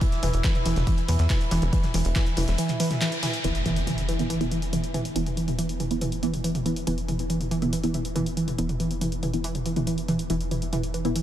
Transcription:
Already playing: synth drone E3 E4
0.01 synth arpeggio sound E3, kick, closed hi-hat, mid tom
0.12 snare, closed hi-hat
0.23 analog synth bass E1, synth arpeggio sound E3, closed hi-hat, mid tom, open hi-hat
0.34 analog synth bass E1, closed hi-hat
0.44 synth arpeggio sound E3, kick, snare, clap, closed hi-hat
0.55 closed hi-hat, mid tom
0.65 analog synth bass E1, synth arpeggio sound E3, closed hi-hat, open hi-hat
0.76 analog synth bass E1, snare, closed hi-hat, mid tom
0.87 synth arpeggio sound E3, kick, closed hi-hat
0.98 closed hi-hat
1.08 analog synth bass E2, synth arpeggio sound E3, closed hi-hat, mid tom, open hi-hat
1.19 analog synth bass E2, snare, closed hi-hat
1.30 synth arpeggio sound E3, kick, snare, clap, closed hi-hat, mid tom
1.41 closed hi-hat
1.51 analog synth bass E1, synth arpeggio sound E3, closed hi-hat, open hi-hat
1.62 analog synth bass E1, closed hi-hat, mid tom
1.73 synth arpeggio sound E3, kick, closed hi-hat
1.83 snare, closed hi-hat, mid tom
1.94 analog synth bass E1, synth arpeggio sound E3, closed hi-hat, open hi-hat
2.05 analog synth bass E1, closed hi-hat
2.16 synth arpeggio sound E3, kick, snare, clap, closed hi-hat, mid tom
2.26 closed hi-hat
2.37 analog synth bass E1, synth arpeggio sound E3, closed hi-hat, mid tom, open hi-hat
2.48 analog synth bass E1, snare, closed hi-hat
2.58 synth arpeggio sound E3, closed hi-hat
2.69 clap, closed hi-hat, mid tom
2.80 synth arpeggio sound E3, closed hi-hat, open hi-hat
2.91 snare, closed hi-hat, mid tom
3.01 synth arpeggio sound E3, snare, clap, closed hi-hat
3.12 closed hi-hat
3.23 synth arpeggio sound E3, snare, closed hi-hat, mid tom, open hi-hat
3.34 closed hi-hat
3.44 analog synth bass E1, synth stab E3 B3 E4, synth arpeggio sound E3, closed hi-hat, impact
3.55 closed hi-hat
3.66 synth arpeggio sound E3, closed hi-hat, mid tom
3.76 closed hi-hat
3.87 synth arpeggio sound E3, closed hi-hat, mid tom
3.98 closed hi-hat
4.08 synth arpeggio sound E3, closed hi-hat
4.19 synth stab E3 B3 E4, closed hi-hat, mid tom
4.30 synth arpeggio sound E3, closed hi-hat
4.41 synth stab E3 B3 E4, closed hi-hat, mid tom
4.51 synth arpeggio sound E3, closed hi-hat
4.62 closed hi-hat
4.73 synth stab E3 B3 E4, synth arpeggio sound E3, closed hi-hat, mid tom
4.84 closed hi-hat
4.94 synth arpeggio sound E3, closed hi-hat, mid tom
5.05 closed hi-hat
5.16 analog synth bass E1, synth arpeggio sound E3, synth stab E3 B3 E4, closed hi-hat
5.26 closed hi-hat, mid tom
5.37 synth arpeggio sound E3, closed hi-hat
5.48 closed hi-hat, mid tom
5.58 synth arpeggio sound E3, closed hi-hat
5.69 closed hi-hat
5.80 synth arpeggio sound E3, closed hi-hat, mid tom
5.91 synth stab E3 B3 E4, closed hi-hat
6.01 synth arpeggio sound E3, closed hi-hat, mid tom
6.12 closed hi-hat
6.23 synth arpeggio sound E3, synth stab E3 B3 E4, closed hi-hat
6.34 closed hi-hat, mid tom
6.44 synth arpeggio sound E3, closed hi-hat
6.55 closed hi-hat, mid tom
6.66 synth arpeggio sound E3, synth stab E3 B3 E4, closed hi-hat
6.76 closed hi-hat
6.87 analog synth bass E1, synth arpeggio sound E3, synth stab E3 B3 E4, closed hi-hat, mid tom
6.98 closed hi-hat
7.08 synth arpeggio sound E3, closed hi-hat, mid tom
7.19 closed hi-hat
7.30 synth arpeggio sound E3, closed hi-hat
7.41 closed hi-hat, mid tom
7.51 synth arpeggio sound E3, closed hi-hat
7.62 synth stab E3 B3 E4, closed hi-hat, mid tom
7.73 synth arpeggio sound E3, closed hi-hat
7.84 synth stab E3 B3 E4, closed hi-hat
7.94 synth arpeggio sound E3, closed hi-hat, mid tom
8.05 closed hi-hat
8.15 synth arpeggio sound E3, synth stab E3 B3 E4, closed hi-hat, mid tom
8.26 closed hi-hat
8.37 synth arpeggio sound E3, closed hi-hat
8.48 closed hi-hat, mid tom
8.58 analog synth bass E1, synth stab E3 B3 E4, synth arpeggio sound E3, closed hi-hat
8.69 closed hi-hat, mid tom
8.80 synth arpeggio sound E3, closed hi-hat
8.91 closed hi-hat
9.01 synth arpeggio sound E3, closed hi-hat, mid tom
9.12 closed hi-hat
9.23 synth arpeggio sound E3, closed hi-hat, mid tom
9.33 synth stab E3 B3 E4, closed hi-hat
9.44 synth arpeggio sound E3, closed hi-hat
9.55 closed hi-hat, mid tom
9.66 synth arpeggio sound E3, closed hi-hat
9.76 synth stab E3 B3 E4, closed hi-hat, mid tom
9.87 synth arpeggio sound E3, closed hi-hat
9.98 closed hi-hat
10.08 synth arpeggio sound E3, closed hi-hat, mid tom
10.19 closed hi-hat
10.30 analog synth bass E1, synth stab E3 B3 E4, synth arpeggio sound E3, closed hi-hat
10.41 closed hi-hat
10.51 synth arpeggio sound E3, closed hi-hat, mid tom
10.62 closed hi-hat
10.73 synth arpeggio sound E3, closed hi-hat, mid tom
10.83 closed hi-hat
10.94 synth arpeggio sound E3, closed hi-hat
11.05 synth stab E3 B3 E4, closed hi-hat, mid tom
11.16 synth arpeggio sound E3, closed hi-hat

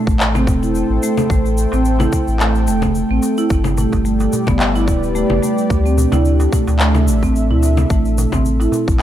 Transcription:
Already playing: marimba A3, analog synth pad A3 D4 A4 C5 E5 G5
0.07 sub bass A1, kick, shaker
0.20 clap, darbuka ka, shaker
0.35 marimba C4, low conga, shaker
0.47 sub bass E1, kick, darbuka dum, shaker
0.63 marimba E4, shaker
0.75 shaker
0.90 sub bass A1
1.03 marimba A3, shaker
1.17 low conga, shaker
1.30 sub bass A1, marimba A3, kick, shaker
1.46 shaker
1.57 shaker
1.72 sub bass A1, marimba C4, darbuka ka, shaker
1.85 shaker
1.99 marimba E4, darbuka ka, low conga, shaker
2.13 kick, shaker
2.28 sub bass A1, shaker
2.40 marimba A3, clap, shaker
2.55 darbuka ka, shaker
2.67 sub bass E1, marimba A3, shaker
2.82 kick, low conga, shaker
2.95 shaker
3.10 sub bass A1, marimba C4
3.22 darbuka ka, shaker
3.38 marimba E4, shaker
3.50 sub bass G1, analog synth pad G3, kick, shaker
3.64 low conga, shaker
3.77 marimba A3, darbuka tek, darbuka dum, shaker
3.90 sub bass G1, analog synth pad G4 D5, kick, darbuka ka, shaker
4.05 marimba A3, shaker
4.20 darbuka ka, shaker
4.33 darbuka tek, darbuka dum, shaker
4.47 sub bass G1, marimba B3, analog synth pad B4, kick, low conga, shaker
4.59 clap, darbuka ka, shaker
4.75 marimba E4, shaker
4.87 sub bass D1, kick, darbuka dum, shaker
5.03 shaker
5.15 marimba A3, shaker
5.30 sub bass G1, low conga
5.43 marimba A3, shaker
5.58 shaker
5.70 sub bass D2, analog synth pad D4, kick, shaker
5.86 marimba C4, shaker
5.98 darbuka tek, darbuka dum, shaker
6.09 sub bass D2, marimba E4, analog synth pad A4, darbuka ka, low conga, shaker
6.25 shaker
6.40 darbuka ka, shaker
6.53 marimba A3, kick, darbuka tek, darbuka dum, shaker
6.67 sub bass D2, analog synth pad E5, darbuka tek, shaker
6.79 marimba A3, clap, shaker
6.95 darbuka ka, low conga, shaker
7.07 sub bass A1, shaker
7.23 marimba C4, kick, darbuka ka, shaker
7.36 shaker
7.50 sub bass D2, marimba E4, darbuka dum
7.63 darbuka ka, shaker
7.77 low conga, shaker
7.90 sub bass A1, analog synth pad A3, marimba A3, kick, shaker
8.05 shaker
8.18 darbuka tek, darbuka dum, shaker
8.32 sub bass A1, marimba C4, kick, darbuka ka, low conga, shaker
8.45 shaker
8.60 marimba E4, darbuka ka, shaker
8.72 darbuka tek, darbuka dum, shaker
8.83 analog synth pad C5
8.88 sub bass A1, kick, shaker

